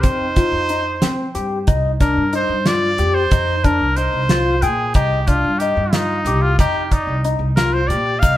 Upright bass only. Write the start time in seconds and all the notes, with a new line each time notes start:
0.03 F2
0.52 F2
1.02 F3
1.35 G2
1.67 C2
2.17 G2
2.49 G2
2.99 F2
3.31 F2
3.80 C2
4.13 C2
4.62 A#2
4.95 C2
5.45 G2
5.77 G2
6.25 C2
6.59 F2
7.07 C2
7.39 C2
7.88 A#2
8.22 C2